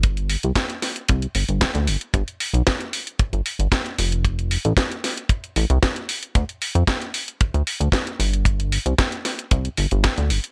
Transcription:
<<
  \new Staff \with { instrumentName = "Analog synth bass" } { \clef bass \time 4/4 \key g \mixolydian \tempo 4 = 114 g,,8 r16 c,16 r4 c,16 r16 g,,16 g,,16 r16 d,16 g,,16 r16 | g,,16 r8 b,,16 r4 g,,16 g,,16 r16 g,,16 r8 f,,8~ | f,,8 r16 a,,16 r4. a,,16 c,16 r4 | d,16 r8 f,16 r4 d,16 d,16 r16 d,16 r8 g,,8~ |
g,,8 r16 c,16 r4 c,16 r16 g,,16 g,,16 r16 d,16 g,,16 r16 | }
  \new DrumStaff \with { instrumentName = "Drums" } \drummode { \time 4/4 <hh bd>16 hh16 hho16 hh16 <hh bd sn>16 hh16 <hho sn>16 hh16 <hh bd>16 hh16 hho16 hh16 <hh bd sn>16 hh16 hho16 hh16 | <hh bd>16 hh16 hho16 hh16 <hh bd sn>16 hh16 hho16 hh16 <hh bd>16 hh16 hho16 hh16 <hh bd sn>16 hh16 hho16 hh16 | <hh bd>16 hh16 hho16 hh16 <hh bd sn>16 hh16 <hho sn>16 hh16 <hh bd>16 hh16 hho16 hh16 <hh bd sn>16 hh16 hho16 hh16 | <hh bd>16 hh16 hho16 hh16 <hh bd sn>16 hh16 hho16 hh16 <hh bd>16 hh16 hho16 hh16 <hh bd sn>16 hh16 hho16 hh16 |
<hh bd>16 hh16 hho16 hh16 <hh bd sn>16 hh16 <hho sn>16 hh16 <hh bd>16 hh16 hho16 hh16 <hh bd sn>16 hh16 hho16 hh16 | }
>>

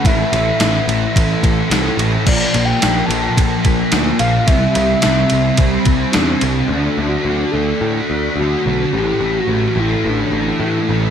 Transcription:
<<
  \new Staff \with { instrumentName = "Soft synth lead" } { \time 4/4 \key a \dorian \tempo 4 = 108 e''2. r4 | d''8. g''8. a''4. r8 f''8 | e''2. d'8 c'8 | d'8. fis'8. a'4 r8 fis'4 |
g'8. fis'8. e'8 d'4 e'8. r16 | }
  \new Staff \with { instrumentName = "Distorted electric guitar" } { \clef bass \time 4/4 \key a \dorian <a, e a>8 <e a>8 <a, e a>8 <e a>4. <a, e a>8 <e a>8 | <bes, f bes>8 <f bes>8 <bes, f bes>8 <f bes>4. <bes, f bes>8 <f bes>8 | <c g c'>8 <g c'>8 <c g c'>8 <g c'>4. <c g c'>8 <g c'>8 | <d a d'>8 <a d'>8 <d a d'>8 <a d'>4. <d a d'>8 <a d'>8 |
<a, e a>8 <e a>8 <a, e a>8 <e a>4. <a, e a>8 <e a>8 | }
  \new Staff \with { instrumentName = "Picked electric bass" } { \clef bass \time 4/4 \key a \dorian a,,8 a,,8 a,,8 a,,8 a,,8 a,,8 c,8 a,,8 | bes,,8 bes,,8 bes,,8 bes,,8 bes,,8 bes,,8 d,8 bes,,8 | c,8 c,8 c,8 c,8 c,8 c,8 e,8 c,8 | d,8 d,8 d,8 d,8 a,8 d,8 d,8 b,,8 |
a,,8 a,,8 a,,8 a,,8 a,,8 a,,8 a,8 a,,8 | }
  \new DrumStaff \with { instrumentName = "Drums" } \drummode { \time 4/4 <bd cymr>8 cymr8 <cymr sn>8 cymr8 <bd cymr>8 <bd cymr>8 <cymr sn>8 cymr8 | <cymc bd>8 cymr8 <cymr sn>8 cymr8 <bd cymr>8 <bd cymr>8 <cymr sn>8 cymr8 | <bd cymr>8 cymr8 <cymr sn>8 cymr8 <bd cymr>8 <bd cymr>8 <cymr sn>8 cymr8 | r4 r4 r4 r4 |
r4 r4 r4 r4 | }
>>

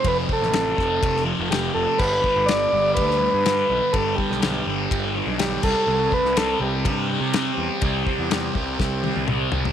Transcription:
<<
  \new Staff \with { instrumentName = "Transistor combo organ" } { \time 4/4 \key g \mixolydian \tempo 4 = 124 b'8 a'2 r8 g'8 a'8 | b'4 d''4 b'2 | a'8 g'2 r8 g'8 a'8~ | a'8 b'8 a'8 g'8 g'2~ |
g'2. r4 | }
  \new Staff \with { instrumentName = "Distorted electric guitar" } { \clef bass \time 4/4 \key g \mixolydian <f, c f>8 <c f>8 <f, c f>8 <c f>4 <c f>8 <f, c f>4 | <g, d g>8 <d g>8 <g, d g>8 <d g>4 <d g>8 <g, d g>4 | <g, d g>8 <d g>8 <g, d g>8 <d g>4 <d g>8 <g, d g>8 <c g c'>8 | <c g c'>8 <g c'>8 <c g c'>8 <g c'>4 <g c'>8 <c g c'>4 |
<c g c'>8 <g c'>8 <c g c'>8 <g c'>4 <g c'>8 <c g c'>4 | }
  \new Staff \with { instrumentName = "Picked electric bass" } { \clef bass \time 4/4 \key g \mixolydian f,,8 r16 a,,8. f,,8 f,,8. f,,8. f,,16 r16 | g,,8 r16 g,,8. g,,8 d,8. g,8. b,,16 r16 | g,,8 r16 b,,8. g,,8 g,,8. b,,8. c,16 r16 | c,8 r16 c,8. c,8 g,8. c8. e,16 r16 |
c,8 r16 e,8. c,8 c,8. c,8. c,16 r16 | }
  \new DrumStaff \with { instrumentName = "Drums" } \drummode { \time 4/4 <bd rb>8 bd16 sn16 <rb sn>8 <bd sn>8 <bd rb>16 sn8. <rb sn>4 | <cymc bd>8 bd8 <rb sn>4 <bd rb>16 sn8. <rb sn>4 | <bd rb>8 bd16 sn16 <rb sn>4 <bd rb>4 <rb sn>8 <cymc bd>8 | r8 bd16 sn16 <rb sn>4 <bd rb>4 <rb sn>4 |
<bd rb>8 bd8 <rb sn>8 bd8 <bd sn>8 tommh16 tommh16 toml8 tomfh16 tomfh16 | }
>>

